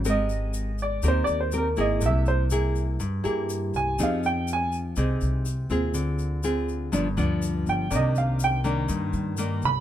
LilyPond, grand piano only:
\new Staff \with { instrumentName = "Grand piano" } { \time 4/4 \key c \minor \tempo 4 = 122 ees''4. d''8 \tuplet 3/2 { c''8 d''8 c''8 } bes'8 ees''8 | e''8 c''8 r2 r8 aes''8 | f''8 g''8 aes''8 r2 r8 | r2. r8 g''8 |
<d'' ees''>8 f''8 g''8 r2 ces'''8 | }